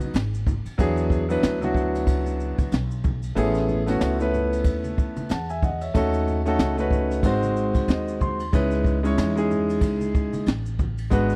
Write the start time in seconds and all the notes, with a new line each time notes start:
Already playing: F#3 B3 C#4 D#4 B4
0.01 muted upright bass stroke, ride, high conga, shaker
0.14 G#1, snare, hi-hat pedal, ride, shaker
0.34 shaker
0.47 kick, high conga, low conga, shaker
0.66 muted upright bass stroke, ride, shaker
0.78 E2 F#3 B3 D4 E4 G#4, kick, ride, shaker
0.97 shaker
1.10 kick, high conga, low conga, shaker
1.29 F#3 B3 D4 E4 B4, ride, shaker
1.43 D2, snare, hi-hat pedal, ride, shaker
1.61 F#3 B3 D4 E4 F#4, snare, high conga, shaker
1.74 kick, low conga, shaker
1.95 snare, ride, shaker
2.07 C#2, kick, ride, shaker
2.26 high conga, shaker
2.40 shaker
2.58 muted upright bass stroke, kick, ride, high conga, shaker
2.72 B1, snare, hi-hat pedal, ride, shaker
2.91 shaker
3.04 kick, high conga, low conga, shaker
3.23 ride, shaker
3.35 A1 A3 B3 C#4 E4 G#4, ride, shaker
3.54 snare, shaker
3.69 low conga, shaker
3.86 A3 B3 C#4 E4 F#4, snare, ride, shaker
4.01 C#2, snare, hi-hat pedal, ride, shaker
4.19 A3 B3 C#4 E4 B4, snare, shaker
4.34 low conga, shaker
4.53 ride, shaker
4.64 D#2, kick, ride, shaker
4.84 high conga, shaker
4.98 kick, shaker
5.16 muted upright bass stroke, ride, high conga, shaker
5.29 E2 F#5 A5, snare, hi-hat pedal, ride, shaker
5.50 E5 G#5, shaker
5.62 D#5 F#5, kick, high conga, low conga, shaker
5.81 C#5 E5, ride, shaker
5.94 D#2 A3 C#4 D#4 F#4 A4, kick, ride, shaker
6.13 shaker
6.28 low conga, shaker
6.45 A3 C#4 D#4 F#4 A4, ride, shaker
6.59 C#2, snare, hi-hat pedal, ride, shaker
6.77 A3 C#4 D#4 F#4 B4, snare, shaker
6.91 kick, low conga, shaker
7.11 snare, ride, shaker
7.23 G#1 G#3 C4 D#4 F#4 C5, kick, ride, shaker
7.43 high conga, shaker
7.56 shaker
7.75 muted upright bass stroke, kick, ride, high conga, shaker
7.88 D#2 D#5, snare, hi-hat pedal, ride, shaker
8.08 shaker
8.21 C6, kick, high conga, low conga, shaker
8.40 ride, shaker
8.53 C#2 G#3 C#4 D#4 E4 B4, kick, ride, shaker
8.71 snare, shaker
8.84 kick, low conga, shaker
9.03 G#3 C#4 D#4 E4 C#5, ride, shaker
9.18 E2, snare, hi-hat pedal, ride, shaker
9.36 G#3 C#4 D#4 E4 G#4, shaker
9.51 low conga, shaker
9.70 ride, shaker
9.81 C#2, kick, ride, shaker
10.01 high conga, shaker
10.15 kick, shaker
10.33 muted upright bass stroke, ride, high conga, shaker
10.46 A1, snare, hi-hat pedal, ride, shaker
10.66 shaker
10.79 kick, high conga, low conga, shaker
10.98 ride, shaker
11.10 G#1 G#3 B3 D4 F#4 B4, kick, ride, shaker
11.29 snare, shaker